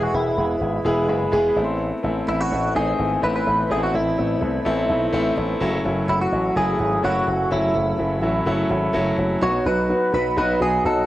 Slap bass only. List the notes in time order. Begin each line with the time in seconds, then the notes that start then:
0.13 E1
0.37 E1
0.61 G#1
0.85 E1
1.08 F#1
1.32 E1
1.56 A1
2.04 A1
2.27 A1
2.51 A1
2.75 A1
2.99 G#1
3.23 A1
3.46 A1
3.70 A1
3.94 A1
4.18 A1
4.42 C2
4.65 A1
4.89 B1
5.13 A1
5.37 A1
5.61 F#1
5.85 F#1
6.08 F#1
6.32 A1
6.56 F#1
6.80 G#1
7.04 F#1
7.27 F#1
7.51 F#1
7.75 F#1
7.99 F#1
8.22 A1
8.46 F#1
8.70 G#1
8.94 F#1
9.18 F#1
9.42 B1
9.65 B1
10.13 B1
10.37 B1
10.61 B1
10.85 B1